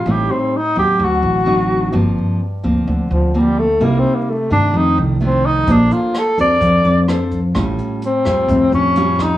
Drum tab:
HH |--------|--------|--------|xxxxxxxx|
SD |--------|--------|--------|--r---r-|
BD |--------|--------|--------|o--oo--o|

HH |xxxxxxxx|
SD |r--r---r|
BD |o--oo--o|